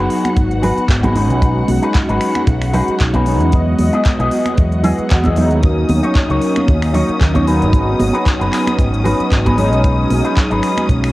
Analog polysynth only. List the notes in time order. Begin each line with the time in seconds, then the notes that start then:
Already playing: F#3 B3 D#4
1.15 F#3 G#3 C#4 D#4
1.41 F#3 G#3 C#4 D#4
3.26 F#3 G#3 C#4 D#4
3.52 F#3 G#3 B3 D#5
5.36 F#3 G#3 B3 D#4
5.62 F#3 A#3 D#4
7.47 F#3 A#3 B3 D#4
7.73 F#3 B3 D#4
9.57 F#3 G#3 C#4 D#4
9.83 F#3 G#3 C#4 D#4